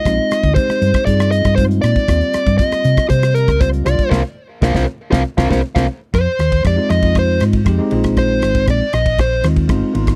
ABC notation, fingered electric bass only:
X:1
M:4/4
L:1/16
Q:1/4=118
K:Bbmix
V:1 name="Fingered electric bass" clef=bass
B,,, z2 D,, z2 G,, z G,,3 G,,3 B,, z | E,, z2 G,, z2 C, z C,3 _D,,3 C,, z | C,, z3 C,, C,, z2 C,, z C,, C,, z C,, z2 | F,, z E,,2 F,, z F,,4 A,,2 F,, z B,,,2- |
B,,,2 A,,,2 B,,, z B,,,4 E,,2 G,,, z A,,,2 |]